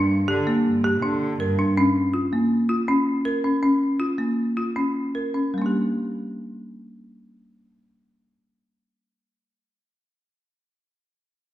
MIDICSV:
0, 0, Header, 1, 3, 480
1, 0, Start_track
1, 0, Key_signature, -2, "minor"
1, 0, Tempo, 373599
1, 2273, Time_signature, 5, 2, 24, 8
1, 6126, Tempo, 388098
1, 14500, End_track
2, 0, Start_track
2, 0, Title_t, "Marimba"
2, 0, Program_c, 0, 12
2, 0, Note_on_c, 0, 62, 70
2, 188, Note_off_c, 0, 62, 0
2, 361, Note_on_c, 0, 67, 64
2, 514, Note_off_c, 0, 67, 0
2, 603, Note_on_c, 0, 58, 57
2, 908, Note_off_c, 0, 58, 0
2, 1083, Note_on_c, 0, 67, 65
2, 1234, Note_off_c, 0, 67, 0
2, 1316, Note_on_c, 0, 62, 62
2, 1622, Note_off_c, 0, 62, 0
2, 1798, Note_on_c, 0, 70, 56
2, 1950, Note_off_c, 0, 70, 0
2, 2039, Note_on_c, 0, 62, 59
2, 2190, Note_off_c, 0, 62, 0
2, 2280, Note_on_c, 0, 61, 72
2, 2583, Note_off_c, 0, 61, 0
2, 2744, Note_on_c, 0, 65, 55
2, 2899, Note_off_c, 0, 65, 0
2, 2989, Note_on_c, 0, 58, 57
2, 3295, Note_off_c, 0, 58, 0
2, 3459, Note_on_c, 0, 65, 57
2, 3614, Note_off_c, 0, 65, 0
2, 3703, Note_on_c, 0, 61, 65
2, 4010, Note_off_c, 0, 61, 0
2, 4179, Note_on_c, 0, 70, 57
2, 4334, Note_off_c, 0, 70, 0
2, 4423, Note_on_c, 0, 61, 51
2, 4577, Note_off_c, 0, 61, 0
2, 4659, Note_on_c, 0, 61, 68
2, 4970, Note_off_c, 0, 61, 0
2, 5134, Note_on_c, 0, 65, 53
2, 5294, Note_off_c, 0, 65, 0
2, 5374, Note_on_c, 0, 58, 47
2, 5692, Note_off_c, 0, 58, 0
2, 5871, Note_on_c, 0, 65, 53
2, 6031, Note_off_c, 0, 65, 0
2, 6116, Note_on_c, 0, 61, 55
2, 6423, Note_off_c, 0, 61, 0
2, 6598, Note_on_c, 0, 70, 50
2, 6751, Note_off_c, 0, 70, 0
2, 6838, Note_on_c, 0, 61, 46
2, 6991, Note_off_c, 0, 61, 0
2, 7079, Note_on_c, 0, 55, 46
2, 7128, Note_on_c, 0, 58, 45
2, 7175, Note_on_c, 0, 62, 41
2, 7228, Note_on_c, 0, 67, 42
2, 12742, Note_off_c, 0, 55, 0
2, 12790, Note_off_c, 0, 58, 0
2, 12837, Note_off_c, 0, 62, 0
2, 12890, Note_off_c, 0, 67, 0
2, 14500, End_track
3, 0, Start_track
3, 0, Title_t, "Cello"
3, 0, Program_c, 1, 42
3, 0, Note_on_c, 1, 43, 73
3, 347, Note_off_c, 1, 43, 0
3, 379, Note_on_c, 1, 50, 65
3, 598, Note_off_c, 1, 50, 0
3, 850, Note_on_c, 1, 43, 58
3, 1332, Note_on_c, 1, 50, 62
3, 1352, Note_off_c, 1, 43, 0
3, 1778, Note_off_c, 1, 50, 0
3, 1808, Note_on_c, 1, 43, 75
3, 2255, Note_off_c, 1, 43, 0
3, 14500, End_track
0, 0, End_of_file